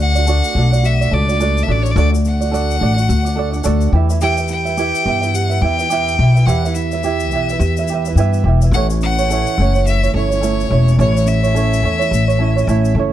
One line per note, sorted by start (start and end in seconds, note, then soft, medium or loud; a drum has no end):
0.00 0.40 D2 loud
0.00 0.54 A3 medium
0.00 0.16 D4 soft
0.00 1.11 D4 medium
0.00 0.16 F#4 medium
0.00 0.26 F#4 medium
0.00 0.14 D5 medium
0.00 0.87 F#5 loud
0.15 0.26 D4 soft
0.15 0.27 F#4 soft
0.15 0.27 D5 medium
0.15 shaker soft
0.26 0.55 D4 medium
0.26 0.82 F#4 medium
0.26 0.56 F#4 medium
0.26 0.54 A4 medium
0.26 0.56 D5 medium
0.26 shaker medium
0.44 shaker soft
0.55 1.08 B1 medium
0.55 1.39 A3 medium
0.55 0.73 D4 medium
0.55 0.73 F#4 medium
0.55 0.72 A4 medium
0.55 0.71 D5 medium
0.72 1.02 D4 soft
0.72 1.01 F#4 soft
0.72 1.00 D5 medium
0.72 shaker soft
0.83 1.96 F#4 medium
0.83 1.15 E5 medium
0.83 shaker medium
1.01 1.12 D4 soft
1.01 1.12 F#4 soft
1.01 1.12 D5 soft
1.01 shaker soft
1.11 1.64 C#2 medium
1.11 1.67 D4 medium
1.11 1.29 D4 medium
1.11 1.30 F#4 medium
1.11 1.28 A4 medium
1.11 1.65 D5 medium
1.11 1.27 D5 medium
1.29 1.40 D4 soft
1.29 1.40 F#4 soft
1.29 1.40 D5 medium
1.29 shaker soft
1.40 1.96 A3 medium
1.40 1.67 D4 medium
1.40 1.68 F#4 medium
1.40 1.66 A4 medium
1.40 1.66 D5 medium
1.40 shaker medium
1.57 shaker soft
1.63 1.95 A4 medium
1.63 1.73 E5 medium
1.68 1.94 A1 medium
1.68 2.24 D4 medium
1.68 1.95 D4 medium
1.68 1.96 F#4 medium
1.68 1.97 D5 medium
1.68 1.84 D5 medium
1.83 1.92 C#5 medium
1.83 shaker soft
1.91 1.97 D5 medium
1.96 2.77 D2 loud
1.96 2.80 A3 medium
1.96 2.13 D4 medium
1.96 2.13 F#4 medium
1.96 2.52 F#4 medium
1.96 2.13 A4 medium
1.96 2.10 D5 medium
1.96 2.11 D5 medium
1.96 shaker medium
2.12 2.43 D4 soft
2.12 2.39 D5 medium
2.12 shaker soft
2.25 3.36 D4 medium
2.25 3.91 F#5 medium
2.25 shaker medium
2.40 2.51 D4 soft
2.40 2.52 F#4 soft
2.40 2.52 D5 medium
2.40 shaker soft
2.51 2.79 D4 medium
2.51 2.80 F#4 medium
2.51 3.08 F#4 medium
2.51 2.77 A4 medium
2.51 2.78 D5 medium
2.51 shaker medium
2.71 shaker medium
2.79 3.07 A1 medium
2.79 3.65 A3 medium
2.79 2.97 D4 medium
2.79 2.97 F#4 medium
2.79 2.97 A4 medium
2.83 2.95 D5 medium
2.96 3.26 D4 soft
2.96 3.25 F#4 medium
2.96 3.23 D5 medium
2.96 shaker soft
3.09 3.61 D2 loud
3.09 4.00 F#4 medium
3.09 shaker medium
3.25 3.35 D4 soft
3.25 3.37 D5 medium
3.25 shaker soft
3.36 3.54 D4 medium
3.36 4.00 D4 medium
3.36 3.53 F#4 medium
3.36 3.53 A4 medium
3.36 3.51 D5 medium
3.53 3.63 D4 medium
3.53 3.63 D5 medium
3.53 shaker soft
3.64 3.91 D2 loud
3.64 4.01 A3 medium
3.64 3.93 D4 medium
3.64 3.93 F#4 loud
3.64 3.92 A4 medium
3.64 3.94 D5 medium
3.64 shaker medium
3.81 shaker soft
3.92 4.91 E2 medium
3.92 4.21 E3 medium
3.92 4.11 E4 medium
3.92 4.10 G4 medium
3.92 4.09 E5 medium
4.10 4.21 E4 soft
4.10 4.21 B4 soft
4.10 4.22 E5 soft
4.10 shaker medium
4.21 6.46 E3 medium
4.21 4.39 E4 medium
4.21 4.39 G4 medium
4.21 4.76 G4 medium
4.21 4.39 B4 medium
4.21 4.37 E5 medium
4.21 4.48 G5 loud
4.21 shaker medium
4.38 4.68 E4 soft
4.38 4.67 B4 soft
4.38 4.64 E5 medium
4.38 shaker soft
4.48 5.62 E4 medium
4.48 5.36 G5 loud
4.48 shaker soft
4.65 4.78 E4 soft
4.65 4.78 B4 soft
4.65 4.77 E5 medium
4.65 shaker soft
4.77 5.06 E4 medium
4.77 5.33 G4 medium
4.77 5.04 G4 medium
4.77 5.07 B4 medium
4.77 5.07 E5 medium
4.77 shaker medium
4.95 shaker medium
5.05 5.58 G2 medium
5.05 5.89 B3 medium
5.05 5.23 E4 medium
5.05 5.23 G4 medium
5.05 5.20 E5 medium
5.21 5.51 E4 soft
5.21 5.50 B4 soft
5.21 5.49 E5 medium
5.21 shaker medium
5.34 6.46 G4 medium
5.34 5.63 F#5 medium
5.34 shaker medium
5.50 5.62 E4 soft
5.50 5.63 B4 soft
5.50 5.62 E5 soft
5.50 shaker soft
5.61 6.15 E2 medium
5.61 6.19 E4 medium
5.61 5.80 E4 medium
5.61 5.79 G4 medium
5.61 5.79 B4 medium
5.61 5.78 E5 medium
5.61 6.47 G5 loud
5.79 5.90 E4 soft
5.79 5.90 B4 soft
5.79 5.90 E5 medium
5.79 shaker soft
5.90 7.30 B3 medium
5.90 6.18 E4 medium
5.90 6.17 G4 medium
5.90 6.19 B4 medium
5.90 6.20 E5 medium
5.90 shaker medium
6.08 shaker soft
6.18 6.45 B1 medium
6.18 6.76 E4 medium
6.18 6.36 E4 medium
6.18 6.36 G4 medium
6.18 6.34 E5 medium
6.35 6.46 E4 soft
6.35 6.46 B4 soft
6.35 6.47 E5 soft
6.35 shaker medium
6.46 7.31 E2 loud
6.46 8.73 E3 medium
6.46 6.64 E4 medium
6.46 6.64 G4 medium
6.46 7.03 G4 medium
6.46 6.64 B4 medium
6.46 6.63 E5 medium
6.46 6.76 F#5 medium
6.46 shaker medium
6.65 6.94 E4 soft
6.65 6.93 B4 medium
6.65 6.92 E5 medium
6.65 shaker soft
6.74 7.88 E4 medium
6.74 8.44 E5 medium
6.74 shaker medium
6.92 7.04 B4 medium
6.92 7.04 E5 medium
6.92 shaker soft
6.96 7.04 E4 soft
7.03 7.33 E4 medium
7.03 7.58 G4 medium
7.03 7.31 G4 medium
7.03 7.33 B4 medium
7.03 7.33 E5 medium
7.03 shaker medium
7.20 shaker medium
7.31 7.58 B1 medium
7.31 8.16 B3 medium
7.31 7.50 E4 medium
7.31 7.49 G4 medium
7.31 shaker soft
7.35 7.51 B4 medium
7.35 7.49 E5 medium
7.49 7.79 E4 soft
7.49 7.79 B4 soft
7.49 7.78 E5 medium
7.49 shaker soft
7.60 8.12 E2 loud
7.60 8.73 G4 medium
7.60 shaker medium
7.77 7.90 B4 soft
7.77 7.89 E5 medium
7.77 shaker soft
7.83 7.90 E4 medium
7.88 8.45 E4 medium
7.88 8.06 G4 medium
7.88 shaker medium
7.93 8.07 B4 medium
7.93 8.06 E5 medium
8.05 8.18 B4 medium
8.05 8.18 E5 medium
8.05 shaker soft
8.10 8.16 E4 soft
8.16 8.42 G2 medium
8.16 8.80 B3 medium
8.16 8.45 E4 medium
8.16 8.44 G4 medium
8.16 8.46 B4 loud
8.16 8.46 E5 loud
8.16 shaker medium
8.33 shaker soft
8.44 8.70 E1 medium
8.44 9.01 E4 medium
8.44 8.62 E4 medium
8.44 8.62 G4 medium
8.48 8.62 E5 medium
8.62 8.75 B4 soft
8.62 8.73 E5 medium
8.62 shaker soft
8.66 8.74 E4 soft
8.71 9.42 A1 loud
8.71 10.97 E3 medium
8.71 8.91 C#4 medium
8.71 8.90 E4 medium
8.71 8.90 A4 medium
8.71 9.29 A4 medium
8.71 8.87 F#5 loud
8.71 shaker medium
8.76 8.89 C#5 medium
8.90 9.19 C#4 soft
8.90 9.19 E4 soft
8.90 9.17 C#5 medium
8.90 shaker medium
9.01 10.14 C#4 medium
9.01 9.83 F#5 medium
9.01 shaker soft
9.18 9.30 C#4 soft
9.18 9.30 E4 soft
9.18 9.30 C#5 medium
9.18 shaker soft
9.30 9.58 C#4 medium
9.30 9.59 E4 medium
9.30 9.57 A4 medium
9.30 9.85 A4 medium
9.30 9.57 C#5 medium
9.30 shaker medium
9.47 shaker soft
9.58 10.10 F#1 medium
9.58 10.42 A3 medium
9.58 9.76 C#4 medium
9.58 9.76 E4 medium
9.58 9.75 A4 medium
9.58 9.74 C#5 medium
9.75 10.04 C#4 soft
9.75 10.03 E4 soft
9.75 10.02 C#5 soft
9.75 shaker soft
9.86 10.98 A4 medium
9.86 10.13 E5 medium
9.86 shaker medium
10.03 10.14 C#4 soft
10.03 10.15 E4 soft
10.03 10.13 C#5 soft
10.03 shaker soft
10.14 10.66 G1 medium
10.14 10.32 C#4 medium
10.14 10.70 C#4 medium
10.14 10.31 E4 medium
10.14 10.30 A4 soft
10.14 10.96 C#5 medium
10.14 10.29 C#5 medium
10.30 10.41 C#4 soft
10.30 10.41 E4 soft
10.30 10.42 C#5 soft
10.30 shaker soft
10.41 11.82 A3 medium
10.41 10.69 C#4 medium
10.41 10.70 E4 medium
10.41 10.67 A4 medium
10.41 10.68 C#5 medium
10.41 shaker medium
10.60 shaker soft
10.68 10.97 E1 medium
10.68 10.97 C#4 medium
10.68 11.25 C#4 medium
10.68 10.98 E4 medium
10.68 10.96 A4 medium
10.68 10.99 C#5 medium
10.88 shaker medium
10.98 11.80 A1 loud
10.98 13.13 E3 medium
10.98 11.16 C#4 medium
10.98 11.16 E4 medium
10.98 11.14 A4 medium
10.98 11.54 A4 medium
10.98 11.13 C#5 medium
10.98 11.30 C#5 medium
10.98 shaker medium
11.14 11.45 C#4 soft
11.14 11.43 E4 medium
11.14 11.42 C#5 soft
11.14 shaker medium
11.26 12.39 C#4 medium
11.26 12.97 E5 medium
11.26 shaker medium
11.43 11.54 C#4 soft
11.43 11.55 E4 medium
11.43 11.55 C#5 soft
11.43 shaker soft
11.54 11.81 C#4 medium
11.54 11.83 E4 medium
11.54 11.81 A4 medium
11.54 12.10 A4 medium
11.54 11.84 C#5 medium
11.54 shaker medium
11.73 shaker medium
11.82 12.09 E2 medium
11.82 12.66 A3 medium
11.82 12.00 C#4 medium
11.82 11.99 E4 medium
11.82 12.00 A4 medium
11.82 11.98 C#5 medium
11.99 12.29 C#4 soft
11.99 12.28 E4 medium
11.99 12.26 C#5 medium
11.99 shaker soft
12.11 12.64 A1 medium
12.11 13.13 A4 medium
12.11 shaker medium
12.28 12.38 C#4 soft
12.28 12.40 E4 soft
12.28 12.40 C#5 medium
12.28 shaker soft
12.38 12.57 C#4 medium
12.38 12.95 C#4 medium
12.38 12.57 E4 medium
12.38 12.56 A4 medium
12.38 12.55 C#5 medium
12.56 12.67 C#4 soft
12.56 12.68 E4 medium
12.56 12.68 C#5 medium
12.56 shaker soft
12.67 12.94 A1 loud
12.67 13.13 A3 medium
12.67 12.97 C#4 medium
12.67 12.97 E4 loud
12.67 12.95 A4 medium
12.67 12.96 C#5 medium
12.67 shaker medium
12.85 shaker soft
12.95 13.13 F#1 medium
12.95 13.13 C#4 medium
12.95 13.13 E4 medium
12.95 13.13 A4 medium
12.99 13.13 C#5 medium